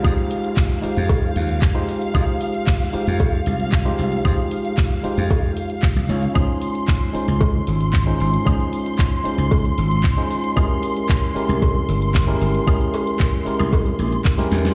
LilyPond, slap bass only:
\new Staff \with { instrumentName = "Slap bass" } { \clef bass \time 4/4 \key f \minor \tempo 4 = 114 f,16 r4. f,8 r16 ees,8 f,16 r8. | f,16 r4. f,8 r16 c,8. r16 c,16 r16 | f,16 r4. f,8 r4 c,16 des,16 r16 | des,16 r4. des,8 r16 aes,,8. r16 aes,,16 r16 |
des,16 r4. des,8 r16 aes,,8 des,16 r8. | c,16 r4. c,8 r16 g,,8. r16 g,,16 r16 | c,16 r4. c,8 r16 bes,,16 r8. e,16 r16 | }